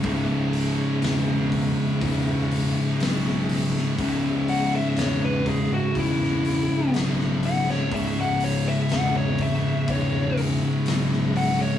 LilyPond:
<<
  \new Staff \with { instrumentName = "Lead electric guitar" } { \time 4/4 \key cis \minor \tempo 4 = 61 r1 | r8 fis''16 e''16 cis''16 b'16 gis'16 fis'16 e'4 r8 fis''16 cis''16 | e''16 fis''16 cis''16 e''16 fis''16 cis''16 e''8 cis''8 r4 fis''16 cis''16 | }
  \new Staff \with { instrumentName = "Tonewheel organ" } { \clef bass \time 4/4 \key cis \minor <cis gis e'>1~ | <cis gis e'>1~ | <cis gis e'>1 | }
  \new Staff \with { instrumentName = "Distorted electric guitar" } { \clef bass \time 4/4 \key cis \minor <cis, gis, cis>2 <cis, gis, cis>2 | <cis, gis, cis>2 <cis, gis, cis>2 | <cis, gis, cis>2 <cis, gis, cis>2 | }
  \new Staff \with { instrumentName = "Distorted electric guitar" } { \clef bass \time 4/4 \key cis \minor <cis, gis, cis>1 | <cis, gis, cis>1 | <cis, gis, cis>1 | }
  \new Staff \with { instrumentName = "Fingered electric bass" } { \clef bass \time 4/4 \key cis \minor cis,,4 e,,4 e,,4 b,,4 | cis,,4 e,,4 e,,4 b,,4 | cis,,4 e,,4 e,,4 b,,4 | }
  \new DrumStaff \with { instrumentName = "Drums" } \drummode { \time 4/4 <hho bd>8 hho8 <hho sn>8 <hho bd>8 <hho bd>8 hho8 <hho sn>16 sn16 hho16 sn16 | <hho bd>8 hho8 <hho sn>8 <hho bd>8 <hho bd>16 sn16 hho8 <hho sn>16 sn16 hho16 sn16 | <hho bd>8 hho8 <hho sn>8 <hho bd>8 <hho bd>8 hho8 <hho sn>16 sn16 hho8 | }
>>